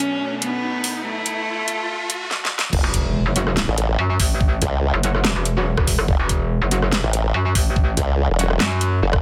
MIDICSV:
0, 0, Header, 1, 9, 480
1, 0, Start_track
1, 0, Key_signature, 3, "minor"
1, 0, Tempo, 419580
1, 1200, Time_signature, 4, 2, 24, 8
1, 10543, End_track
2, 0, Start_track
2, 0, Title_t, "Synth stab"
2, 0, Program_c, 0, 62
2, 3841, Note_on_c, 0, 54, 88
2, 3841, Note_on_c, 0, 61, 78
2, 3841, Note_on_c, 0, 66, 94
2, 3943, Note_off_c, 0, 54, 0
2, 3943, Note_off_c, 0, 61, 0
2, 3943, Note_off_c, 0, 66, 0
2, 5760, Note_on_c, 0, 54, 90
2, 5760, Note_on_c, 0, 61, 86
2, 5761, Note_on_c, 0, 66, 104
2, 5862, Note_off_c, 0, 54, 0
2, 5863, Note_off_c, 0, 61, 0
2, 5863, Note_off_c, 0, 66, 0
2, 6367, Note_on_c, 0, 54, 96
2, 6367, Note_on_c, 0, 61, 88
2, 6367, Note_on_c, 0, 66, 107
2, 6458, Note_off_c, 0, 54, 0
2, 6459, Note_off_c, 0, 61, 0
2, 6459, Note_off_c, 0, 66, 0
2, 7679, Note_on_c, 0, 54, 89
2, 7679, Note_on_c, 0, 66, 97
2, 7680, Note_on_c, 0, 61, 80
2, 7782, Note_off_c, 0, 54, 0
2, 7782, Note_off_c, 0, 61, 0
2, 7782, Note_off_c, 0, 66, 0
2, 9599, Note_on_c, 0, 54, 91
2, 9600, Note_on_c, 0, 61, 84
2, 9600, Note_on_c, 0, 66, 100
2, 9702, Note_off_c, 0, 54, 0
2, 9702, Note_off_c, 0, 61, 0
2, 9702, Note_off_c, 0, 66, 0
2, 10543, End_track
3, 0, Start_track
3, 0, Title_t, "Cello"
3, 0, Program_c, 1, 42
3, 0, Note_on_c, 1, 61, 97
3, 389, Note_off_c, 1, 61, 0
3, 479, Note_on_c, 1, 59, 101
3, 1109, Note_off_c, 1, 59, 0
3, 1199, Note_on_c, 1, 57, 106
3, 2639, Note_off_c, 1, 57, 0
3, 10543, End_track
4, 0, Start_track
4, 0, Title_t, "Supersaw synth"
4, 0, Program_c, 2, 81
4, 0, Note_on_c, 2, 42, 81
4, 0, Note_on_c, 2, 47, 77
4, 0, Note_on_c, 2, 57, 87
4, 2594, Note_off_c, 2, 42, 0
4, 2594, Note_off_c, 2, 57, 0
4, 2607, Note_off_c, 2, 47, 0
4, 10543, End_track
5, 0, Start_track
5, 0, Title_t, "Wobble bass"
5, 0, Program_c, 3, 39
5, 3120, Note_on_c, 3, 30, 99
5, 3226, Note_off_c, 3, 30, 0
5, 4208, Note_on_c, 3, 33, 93
5, 4542, Note_off_c, 3, 33, 0
5, 5281, Note_on_c, 3, 37, 100
5, 5627, Note_off_c, 3, 37, 0
5, 6960, Note_on_c, 3, 30, 99
5, 7066, Note_off_c, 3, 30, 0
5, 8046, Note_on_c, 3, 33, 97
5, 8382, Note_off_c, 3, 33, 0
5, 9119, Note_on_c, 3, 37, 102
5, 9466, Note_off_c, 3, 37, 0
5, 9486, Note_on_c, 3, 28, 101
5, 9822, Note_off_c, 3, 28, 0
5, 10318, Note_on_c, 3, 30, 95
5, 10543, Note_off_c, 3, 30, 0
5, 10543, End_track
6, 0, Start_track
6, 0, Title_t, "Wobble bass"
6, 0, Program_c, 4, 39
6, 3248, Note_on_c, 4, 28, 99
6, 3707, Note_off_c, 4, 28, 0
6, 3726, Note_on_c, 4, 30, 96
6, 4186, Note_off_c, 4, 30, 0
6, 4560, Note_on_c, 4, 42, 96
6, 4782, Note_off_c, 4, 42, 0
6, 4800, Note_on_c, 4, 33, 95
6, 5262, Note_off_c, 4, 33, 0
6, 5647, Note_on_c, 4, 30, 96
6, 6107, Note_off_c, 4, 30, 0
6, 6127, Note_on_c, 4, 28, 99
6, 6826, Note_off_c, 4, 28, 0
6, 6847, Note_on_c, 4, 30, 98
6, 6942, Note_off_c, 4, 30, 0
6, 7087, Note_on_c, 4, 28, 96
6, 7546, Note_off_c, 4, 28, 0
6, 7568, Note_on_c, 4, 30, 94
6, 8027, Note_off_c, 4, 30, 0
6, 8399, Note_on_c, 4, 42, 100
6, 8622, Note_off_c, 4, 42, 0
6, 8640, Note_on_c, 4, 33, 92
6, 9102, Note_off_c, 4, 33, 0
6, 9839, Note_on_c, 4, 42, 92
6, 10301, Note_off_c, 4, 42, 0
6, 10543, End_track
7, 0, Start_track
7, 0, Title_t, "Impact"
7, 0, Program_c, 5, 103
7, 3121, Note_on_c, 5, 60, 78
7, 5041, Note_off_c, 5, 60, 0
7, 10543, End_track
8, 0, Start_track
8, 0, Title_t, "Riser"
8, 0, Program_c, 6, 103
8, 0, Note_on_c, 6, 60, 77
8, 2640, Note_off_c, 6, 60, 0
8, 10543, End_track
9, 0, Start_track
9, 0, Title_t, "Drums"
9, 479, Note_on_c, 9, 42, 82
9, 593, Note_off_c, 9, 42, 0
9, 959, Note_on_c, 9, 46, 92
9, 1074, Note_off_c, 9, 46, 0
9, 1439, Note_on_c, 9, 42, 76
9, 1553, Note_off_c, 9, 42, 0
9, 1919, Note_on_c, 9, 42, 77
9, 2033, Note_off_c, 9, 42, 0
9, 2399, Note_on_c, 9, 42, 80
9, 2513, Note_off_c, 9, 42, 0
9, 2640, Note_on_c, 9, 38, 73
9, 2755, Note_off_c, 9, 38, 0
9, 2801, Note_on_c, 9, 38, 79
9, 2915, Note_off_c, 9, 38, 0
9, 2960, Note_on_c, 9, 38, 101
9, 3074, Note_off_c, 9, 38, 0
9, 3120, Note_on_c, 9, 49, 110
9, 3121, Note_on_c, 9, 36, 125
9, 3235, Note_off_c, 9, 36, 0
9, 3235, Note_off_c, 9, 49, 0
9, 3361, Note_on_c, 9, 36, 62
9, 3361, Note_on_c, 9, 42, 83
9, 3475, Note_off_c, 9, 36, 0
9, 3475, Note_off_c, 9, 42, 0
9, 3840, Note_on_c, 9, 42, 84
9, 3955, Note_off_c, 9, 42, 0
9, 3967, Note_on_c, 9, 37, 50
9, 4080, Note_on_c, 9, 38, 121
9, 4081, Note_off_c, 9, 37, 0
9, 4194, Note_off_c, 9, 38, 0
9, 4320, Note_on_c, 9, 42, 82
9, 4435, Note_off_c, 9, 42, 0
9, 4800, Note_on_c, 9, 36, 103
9, 4800, Note_on_c, 9, 46, 97
9, 4914, Note_off_c, 9, 46, 0
9, 4915, Note_off_c, 9, 36, 0
9, 5040, Note_on_c, 9, 36, 126
9, 5155, Note_off_c, 9, 36, 0
9, 5280, Note_on_c, 9, 36, 65
9, 5280, Note_on_c, 9, 42, 84
9, 5394, Note_off_c, 9, 36, 0
9, 5395, Note_off_c, 9, 42, 0
9, 5759, Note_on_c, 9, 42, 82
9, 5874, Note_off_c, 9, 42, 0
9, 5887, Note_on_c, 9, 37, 51
9, 6000, Note_on_c, 9, 38, 126
9, 6002, Note_off_c, 9, 37, 0
9, 6114, Note_off_c, 9, 38, 0
9, 6240, Note_on_c, 9, 42, 82
9, 6354, Note_off_c, 9, 42, 0
9, 6606, Note_on_c, 9, 36, 110
9, 6606, Note_on_c, 9, 37, 75
9, 6720, Note_off_c, 9, 36, 0
9, 6720, Note_on_c, 9, 36, 62
9, 6720, Note_on_c, 9, 46, 94
9, 6721, Note_off_c, 9, 37, 0
9, 6834, Note_off_c, 9, 36, 0
9, 6835, Note_off_c, 9, 46, 0
9, 6847, Note_on_c, 9, 37, 75
9, 6960, Note_on_c, 9, 36, 127
9, 6961, Note_off_c, 9, 37, 0
9, 7074, Note_off_c, 9, 36, 0
9, 7200, Note_on_c, 9, 36, 68
9, 7200, Note_on_c, 9, 42, 78
9, 7314, Note_off_c, 9, 36, 0
9, 7314, Note_off_c, 9, 42, 0
9, 7680, Note_on_c, 9, 42, 84
9, 7795, Note_off_c, 9, 42, 0
9, 7807, Note_on_c, 9, 37, 52
9, 7920, Note_on_c, 9, 38, 122
9, 7921, Note_off_c, 9, 37, 0
9, 8034, Note_off_c, 9, 38, 0
9, 8160, Note_on_c, 9, 42, 81
9, 8274, Note_off_c, 9, 42, 0
9, 8640, Note_on_c, 9, 36, 110
9, 8640, Note_on_c, 9, 46, 93
9, 8754, Note_off_c, 9, 36, 0
9, 8754, Note_off_c, 9, 46, 0
9, 8880, Note_on_c, 9, 36, 122
9, 8994, Note_off_c, 9, 36, 0
9, 9119, Note_on_c, 9, 36, 67
9, 9120, Note_on_c, 9, 42, 75
9, 9234, Note_off_c, 9, 36, 0
9, 9234, Note_off_c, 9, 42, 0
9, 9599, Note_on_c, 9, 42, 77
9, 9714, Note_off_c, 9, 42, 0
9, 9726, Note_on_c, 9, 37, 52
9, 9839, Note_on_c, 9, 38, 126
9, 9840, Note_off_c, 9, 37, 0
9, 9953, Note_off_c, 9, 38, 0
9, 10079, Note_on_c, 9, 42, 76
9, 10194, Note_off_c, 9, 42, 0
9, 10445, Note_on_c, 9, 37, 79
9, 10446, Note_on_c, 9, 36, 108
9, 10543, Note_off_c, 9, 36, 0
9, 10543, Note_off_c, 9, 37, 0
9, 10543, End_track
0, 0, End_of_file